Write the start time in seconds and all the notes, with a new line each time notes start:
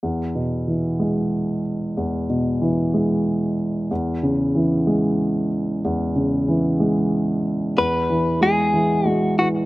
0.03 E2
0.35 B2
0.68 E3
1.00 G#3
1.97 E2
2.30 B2
2.62 E3
2.94 G#3
3.91 E2
4.23 C#3
4.55 E3
4.87 G#3
5.85 E2
6.16 C#3
6.48 E3
6.80 G#3
7.77 E2 B4
8.10 E3
8.41 G#3 G#4
8.74 E3
9.05 G#3 F#4
9.38 E3 F#4